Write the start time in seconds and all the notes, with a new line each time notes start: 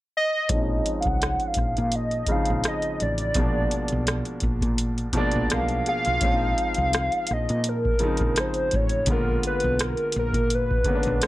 0.17 D#5
0.49 A#1 F3 G#3 C4 C#4 D#4, kick, closed hi-hat
0.86 closed hi-hat
1.01 F#5, closed hi-hat
1.05 C2, kick
1.22 cross-stick, closed hi-hat
1.40 closed hi-hat
1.47 F5
1.54 A#1, kick, closed hi-hat
1.58 cross-stick
1.77 A#2, closed hi-hat
1.92 D#5, closed hi-hat
2.11 closed hi-hat
2.26 C#3 F3, muted fretless electric bass stroke, kick, closed hi-hat
2.30 G#3 C4 D#4 F5
2.46 closed hi-hat
2.50 A#1
2.64 cross-stick, closed hi-hat
2.68 D#5
2.82 closed hi-hat
3.00 A1 D5, closed hi-hat
3.18 closed hi-hat
3.34 A#1 B2 F3 G#3 A#3, kick, closed hi-hat
3.40 D4
3.71 closed hi-hat
3.88 closed hi-hat
3.92 B1
4.07 cross-stick, closed hi-hat
4.25 closed hi-hat
4.40 A#1, kick, closed hi-hat
4.61 A#2, kick, closed hi-hat
4.78 closed hi-hat
4.98 closed hi-hat
5.13 B2 F3 G#3, muted fretless electric bass stroke, kick, closed hi-hat
5.17 A#3 D4 D5
5.32 A#1, closed hi-hat
5.50 B1 A#4 F5, cross-stick, closed hi-hat
5.68 closed hi-hat
5.86 G#4 F5, closed hi-hat
6.05 B1 F4, closed hi-hat
6.21 A#1 F3 G#3 C4 C#4, kick, closed hi-hat
6.25 C#4
6.32 D#4
6.58 closed hi-hat
6.74 C2, closed hi-hat
6.93 cross-stick, closed hi-hat
7.12 closed hi-hat
7.27 A#1, closed hi-hat
7.31 D#5, cross-stick
7.49 A#2, closed hi-hat
7.64 closed hi-hat
7.69 A#4
7.85 kick
7.99 C#3 F3 G#3 C4, muted fretless electric bass stroke, closed hi-hat
8.04 D#4
8.17 A#1, kick, closed hi-hat
8.36 C5, cross-stick, closed hi-hat
8.54 closed hi-hat
8.71 A1, kick, closed hi-hat
8.76 C#5
8.89 closed hi-hat
9.06 A#1 D3 G#3 A#3, kick, closed hi-hat
9.10 B3 F4 A#4
9.43 B4, closed hi-hat
9.60 B1, closed hi-hat
9.79 A#4, cross-stick, closed hi-hat
9.97 closed hi-hat
10.12 A#1, closed hi-hat
10.19 A#4
10.33 A#2, kick, closed hi-hat
10.50 closed hi-hat
10.55 B4
10.71 kick
10.84 D3 G#3 A#3 B3, muted fretless electric bass stroke, kick, closed hi-hat
10.89 C#4
10.95 D4
11.03 A#1, closed hi-hat
11.22 cross-stick, closed hi-hat